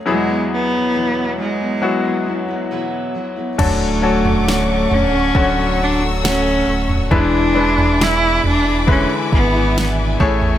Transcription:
0.06 E2 B2 F#3 G#3 B3 E4 G#4
0.28 F#3 G#3 B3 E4
0.54 B3
0.72 F#3 G#3 B3 E4
0.94 E2 B2 F#3 G#3 B3 E4
1.38 F#3 G#3 B3 E4
1.60 F#3 G#3 B3 E4
1.82 F#3 B3 E4 F#4
2.04 F#3 G#3 B3 E4
2.26 F#3 G#3 B3 E4
2.48 F#3 G#3 B3 E4
2.71 E2 B2 F#3 G#3 B3 E4
3.14 F#3 G#3 B3 E4
3.36 F#3 G#3 B3 E4
3.58 D1 D3 F#3 A3 C#4 D4 F#4 A4 F#5 C#6 D6, kick, floor tom, crash
4.02 D3 F#3 A3 C#4 F#4 A4
4.24 A3 C#4 F#4, floor tom
4.46 D3 A3 C#4 F#4, snare
4.90 D1 D3 A3 C#4 F#4, floor tom
4.94 C#4
5.12 A3 C#4 F#4
5.35 D1 D3 F#3 F#4 C#5 E6, kick
5.56 A3 C#4 F#4
5.83 D4
6.00 A3 C#4 F#4
6.22 D3 A3 C#4 F#4, snare
6.27 C#4
6.66 D1 D3 A3 C#4 F#4
6.89 floor tom
7.10 E1 E2 B2 E3 G#3 D4 E4 B4 E5 G#5 B5 D6, kick, floor tom
7.15 D4
7.54 E3 G#3 D4 E4 B4
7.77 E3 G#3 D4 E4, floor tom
7.99 E2 B2 E3 G#3 D4 E4, snare
8.03 E4
8.43 E1 E3 G#3 D4 E4, floor tom
8.47 D4
8.65 E3 G#3 D4 E4
8.87 D3 G#3 E4 B4, kick
8.91 C#4
9.09 E3 G#3 D4 E4
9.33 G#1 B3, kick
9.53 E3 G#3 D4 E4
9.75 E2 B2 E3 G#3 D4 E4, snare
10.19 A1 A2 E3 G#3 A3 E4 G#4 C#5 C#6, kick
10.42 floor tom

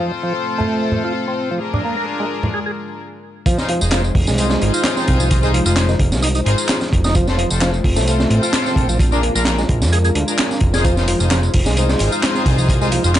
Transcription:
Already playing: A3 C4 F4 A4 C5
0.00 F3
0.23 F3
0.58 A3, low conga
0.92 low conga
1.05 F4
1.28 C4
1.51 F3
1.61 G#3 D4 F4 G#4 A#4
1.74 D4, low conga
1.85 A#3
1.97 A#4
2.20 G#3
2.43 low conga
2.54 G#4
2.66 G#4
3.46 F3 G#3 D#4 F4 C5, kick, closed hi-hat, tambourine
3.58 D#4 F4 G#4 C5, snare, tambourine
3.69 F3, closed hi-hat
3.81 F1 D#4 F4 G#4 C5, tambourine
3.91 F3, snare, clap, closed hi-hat, tambourine
4.04 tambourine
4.15 F1, kick, open hi-hat
4.27 C2 G#3, snare, tambourine
4.38 D#4 F4 G#4 C5, closed hi-hat, tambourine
4.50 snare, tambourine
4.61 G#1 D#4 F4 G#4 C5, closed hi-hat
4.74 F4, tambourine
4.84 snare, clap, closed hi-hat, tambourine
4.97 C4, snare, tambourine
5.08 C2, kick, closed hi-hat
5.20 F3, tambourine
5.31 kick, closed hi-hat, tambourine
5.42 G#3 D#4 F4 G#4 C5, tambourine
5.54 F3, closed hi-hat
5.66 F1 D#4 F4 G#4 C5, tambourine
5.76 snare, clap, closed hi-hat, tambourine
5.89 D#3, snare, tambourine
5.99 F1, kick, closed hi-hat
6.12 C2, snare, tambourine
6.22 D#4, closed hi-hat, tambourine
6.35 D#4, closed hi-hat, tambourine
6.46 G#1 D#4 F4 G#4 C5, closed hi-hat
6.58 tambourine
6.69 snare, clap, closed hi-hat, tambourine
6.81 snare, tambourine
6.93 F1, kick, closed hi-hat
7.04 D#4, snare, tambourine
7.15 F3 A3 C4 C5, kick, closed hi-hat, tambourine
7.27 C4 F4 A4 C5, snare, tambourine
7.38 F3, closed hi-hat
7.50 F1 C4 F4 A4 C5, tambourine
7.61 F3, snare, clap, closed hi-hat, tambourine
7.74 tambourine
7.84 F1, kick, open hi-hat
7.96 C2 A3, snare, tambourine
8.07 C4 F4 A4 C5, closed hi-hat, tambourine
8.20 snare, tambourine
8.30 A1 C4 F4 A4 C5, closed hi-hat
8.43 F4, tambourine
8.53 snare, clap, closed hi-hat, tambourine
8.66 C4, snare, tambourine
8.76 A#1, kick, closed hi-hat
8.89 F3, tambourine
8.99 G#3 D4 A#4, kick, closed hi-hat, tambourine
9.12 D4 F4 G#4 A#4, tambourine
9.23 A#3, closed hi-hat
9.35 A#1 D4 F4 G#4 A#4, tambourine
9.45 snare, clap, closed hi-hat, tambourine
9.58 G#3, snare, tambourine
9.69 A#1, kick, closed hi-hat
9.82 F2, snare, tambourine
9.93 G#4, closed hi-hat, tambourine
10.04 G#4, closed hi-hat, tambourine
10.15 D2, closed hi-hat
10.28 D4 F4 G#4 A#4, tambourine
10.38 snare, clap, closed hi-hat, tambourine
10.51 snare, tambourine
10.60 F1, kick, closed hi-hat
10.74 D#4 F4 G#4 C5, snare, tambourine
10.84 F3 G#3 D#4 C5, kick, closed hi-hat, tambourine
10.97 D#4 F4 G#4 C5, snare, tambourine
11.08 F3, closed hi-hat, open hi-hat
11.20 F1 D#4 F4 G#4 C5, tambourine
11.31 F3, snare, clap, closed hi-hat, tambourine
11.43 tambourine
11.54 F1, kick, open hi-hat
11.66 C2 G#3, snare, tambourine
11.77 D#4 F4 G#4 C5, closed hi-hat, tambourine
11.89 snare, tambourine
11.99 G#1 D#4 F4 G#4 C5, closed hi-hat, open hi-hat
12.12 F4, tambourine
12.23 snare, clap, closed hi-hat, tambourine
12.35 C4, snare, tambourine
12.46 C2, kick, closed hi-hat, open hi-hat
12.58 F3, tambourine
12.69 D5, kick, closed hi-hat, tambourine
12.81 G#3 D#4 F4 G#4 C5, tambourine
12.92 F3, closed hi-hat, open hi-hat
13.04 F1 D#4 F4 G#4 C5, tambourine
13.15 snare, clap, closed hi-hat, tambourine

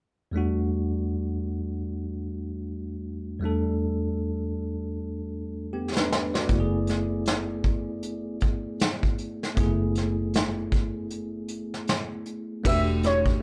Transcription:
0.31 E2 G3 A3
0.36 D4 F#4
3.39 E2 G3 A3
3.44 D4 A4
5.73 B3 G4
5.96 D4 B4, snare
6.12 snare
6.34 F#4 D5, snare
6.47 F#1 A3 B3 E4, kick, closed hi-hat
6.54 F#4
6.60 G#4
6.87 snare, closed hi-hat
7.26 snare, closed hi-hat
7.64 kick, closed hi-hat
8.03 closed hi-hat
8.41 kick, closed hi-hat
8.80 snare, closed hi-hat
9.03 kick
9.18 closed hi-hat
9.43 snare
9.55 F#1 A3 B3, kick, closed hi-hat
9.59 E4 G#4
9.95 snare, closed hi-hat
10.34 snare, closed hi-hat
10.72 kick, closed hi-hat
11.10 closed hi-hat
11.48 closed hi-hat
11.74 snare
11.87 snare, closed hi-hat
12.26 closed hi-hat
12.64 E1 A3 B3 D4 F#4 G4 E5, kick, crash
13.03 E4 C#5, snare, closed hi-hat
13.26 kick

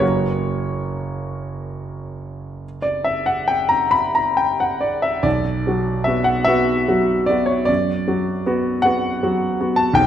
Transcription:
Already playing: F#1
0.00 F#3 A#3 F#4 C#5
2.82 D5
3.04 E5
3.26 F#5
3.48 G5
3.69 A#5
3.91 B5
4.15 A#5
4.37 G5
4.60 F#5
4.81 D5
5.02 E5
5.23 B1 D5
5.67 F#3 F#4
6.04 B3 F#4 E5
6.24 F#5
6.44 B3 F#4 E5
6.88 F#3 F#4
7.26 B3 D5
7.30 F#4
7.46 C#5
7.65 F#2 D5
8.08 F#3 F#4
8.46 B3 F#4
8.82 B3 F#4 F#5
9.23 F#3 F#4
9.60 B3 F#4
9.76 A5
9.93 B1 G5

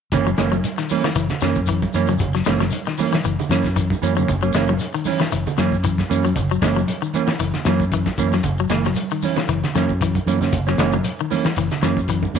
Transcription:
0.12 F#1 E3 A#3 C#4, kick, snare, closed hi-hat, low conga, shekere
0.27 F#3, shekere
0.38 F#1 E3 G#3 A#3 C#4, snare, closed hi-hat, high conga, shekere
0.52 F#3, high conga, shekere
0.64 closed hi-hat, high conga, shekere
0.78 D#3, snare, closed hi-hat, shekere
0.89 E3 A#3 C#4, open hi-hat, high conga, shekere
1.03 E3, snare, high conga, shekere
1.15 F#1 E3, closed hi-hat, shekere
1.29 snare, closed hi-hat, low conga, shekere
1.40 F#2 E3 F#3 A#3 C#4, snare, closed hi-hat, shekere
1.55 kick, shekere
1.66 E3, kick, closed hi-hat, shekere
1.82 kick, closed hi-hat, high conga, shekere
1.93 F#2 E3 A#3 C#4, closed hi-hat, shekere
2.07 F#3, closed hi-hat, low conga, shekere
2.18 F#1, kick, closed hi-hat, low conga, shekere
2.34 F#3, snare, shekere
2.45 F#1 E3 G#3 A#3 C#4, snare, closed hi-hat, high conga, shekere
2.60 F#3, snare, high conga, shekere
2.70 closed hi-hat, high conga, shekere
2.86 D#3, snare, shekere
2.98 E3 A#3 C#4, open hi-hat, high conga, shekere
3.12 E3, snare, high conga, shekere
3.24 F#1 E3, closed hi-hat, shekere
3.39 closed hi-hat, low conga, shekere
3.49 F#2 E3 F#3 A#3 C#4, snare, closed hi-hat, shekere
3.64 kick, snare, closed hi-hat, shekere
3.76 E3, kick, closed hi-hat, shekere
3.90 kick, high conga, shekere
4.02 F#2 E3 A#3 C#4, closed hi-hat, high conga, shekere
4.16 F#3 A#3 C#4, low conga, shekere
4.28 F#1, kick, closed hi-hat, low conga, shekere
4.42 F#3 A#3 C#4, shekere
4.53 F#1 E3 G#3 A#3 C#4, snare, closed hi-hat, high conga, shekere
4.68 F#3, high conga, shekere
4.79 closed hi-hat, high conga, shekere
4.93 D#3, closed hi-hat, shekere
5.05 E3 C#4, muted clean electric guitar stroke, open hi-hat, high conga, shekere
5.19 E3, snare, high conga, shekere
5.32 F#1 E3, closed hi-hat, shekere
5.47 closed hi-hat, low conga, shekere
5.58 F#2 E3 F#3 A#3 C#4, snare, closed hi-hat, shekere
5.72 kick, shekere
5.84 E3, kick, closed hi-hat, shekere
5.98 kick, snare, closed hi-hat, high conga, shekere
6.09 F#2 E3 A#3 C#4, closed hi-hat, high conga, shekere
6.25 F#3, closed hi-hat, shekere
6.36 F#1, kick, closed hi-hat, low conga, shekere
6.51 F#3, shekere
6.62 F#1 E3 G#3 A#3 C#4, kick, snare, closed hi-hat, high conga, shekere
6.76 F#3, shekere
6.88 closed hi-hat, high conga, shekere
7.02 D#3, shekere
7.14 E3 A#3 C#4, closed hi-hat, high conga, shekere
7.27 E3, snare, high conga, shekere
7.39 F#1 E3, closed hi-hat, shekere
7.54 snare, closed hi-hat, low conga, shekere
7.65 F#2 E3 F#3 A#3 C#4, snare, closed hi-hat, shekere
7.79 kick, closed hi-hat, shekere
7.92 E3, kick, closed hi-hat, shekere
8.06 kick, snare, high conga, shekere
8.18 F#2 E3 A#3 C#4, kick, closed hi-hat, shekere
8.32 F#3, snare, shekere
8.43 F#1, kick, closed hi-hat, low conga, shekere
8.58 F#3, shekere
8.69 F#1 E3 G#3 A#3, snare, closed hi-hat, high conga, shekere
8.84 F#3, snare, high conga, shekere
8.95 closed hi-hat, high conga, shekere
9.10 D#3, closed hi-hat, shekere
9.22 E3 C#4, open hi-hat, high conga, shekere
9.36 E3, snare, high conga, shekere
9.48 F#1 E3, closed hi-hat, shekere
9.64 snare, closed hi-hat, low conga, shekere
9.75 F#2 E3 F#3 A#3 C#4, snare, closed hi-hat, shekere
9.89 kick, shekere
10.01 E3, kick, closed hi-hat, shekere
10.15 kick, closed hi-hat, high conga, shekere
10.26 F#2 E3 A#3 C#4, closed hi-hat, high conga, shekere
10.41 A#3 C#4, snare, closed hi-hat, low conga, shekere
10.52 F#1, kick, closed hi-hat, low conga, shekere
10.67 F#3 A#3 C#4, snare, shekere
10.78 F#1 E3 G#3 A#3 C#4, snare, closed hi-hat, high conga, shekere
10.92 F#3, high conga, shekere
11.04 closed hi-hat, high conga, shekere
11.19 D#3, shekere
11.31 E3 A#3 C#4, open hi-hat, high conga, shekere
11.45 E3, snare, high conga, shekere
11.56 F#1 E3, closed hi-hat, shekere
11.71 snare, closed hi-hat, low conga, shekere
11.82 F#2 E3 F#3 A#3 C#4, snare, closed hi-hat, shekere
11.97 kick, closed hi-hat, shekere
12.09 E3, kick, closed hi-hat, shekere
12.22 kick, high conga, shekere
12.34 F#2 E3 A#3, closed hi-hat, high conga, shekere

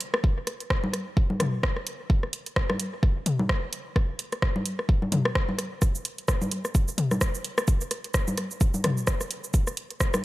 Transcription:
0.01 closed hi-hat
0.14 cross-stick
0.24 kick
0.47 cross-stick, closed hi-hat
0.60 closed hi-hat
0.70 kick, cross-stick
0.84 high conga
0.93 cross-stick, closed hi-hat
1.17 kick
1.30 high conga
1.40 cross-stick, closed hi-hat, mid tom, high conga
1.63 kick, cross-stick
1.77 cross-stick
1.87 closed hi-hat
2.10 kick
2.23 cross-stick
2.33 closed hi-hat
2.46 closed hi-hat
2.56 kick, cross-stick
2.70 cross-stick, high conga
2.80 closed hi-hat
3.03 kick, cross-stick
3.26 closed hi-hat, mid tom
3.39 high conga
3.49 kick, cross-stick
3.73 closed hi-hat
3.96 kick, cross-stick
4.19 closed hi-hat
4.32 cross-stick, closed hi-hat
4.42 kick, cross-stick
4.56 high conga
4.66 closed hi-hat
4.79 cross-stick
4.89 kick
5.02 high conga
5.12 closed hi-hat, mid tom, high conga
5.25 cross-stick
5.35 kick, cross-stick
5.49 high conga
5.58 cross-stick, closed hi-hat
5.82 kick, cross-stick, shaker
5.95 shaker
6.05 closed hi-hat
6.18 closed hi-hat
6.28 kick, cross-stick, shaker
6.42 high conga, shaker
6.51 closed hi-hat
6.65 cross-stick, shaker
6.75 kick, shaker
6.88 shaker
6.98 closed hi-hat, mid tom
7.11 cross-stick, high conga, shaker
7.21 kick, cross-stick, shaker
7.35 shaker
7.45 closed hi-hat
7.58 cross-stick, shaker
7.68 kick, shaker
7.81 shaker
7.91 cross-stick, closed hi-hat
8.04 closed hi-hat
8.14 kick, cross-stick, shaker
8.28 high conga, shaker
8.37 cross-stick, closed hi-hat
8.51 shaker
8.61 kick, shaker
8.74 high conga, shaker
8.84 cross-stick, closed hi-hat, mid tom, high conga
8.97 shaker
9.07 kick, cross-stick, shaker
9.21 cross-stick, shaker
9.31 closed hi-hat
9.44 shaker
9.54 kick, shaker
9.67 cross-stick, shaker
9.77 closed hi-hat
9.90 closed hi-hat
10.00 kick, cross-stick, shaker
10.14 cross-stick, high conga, shaker

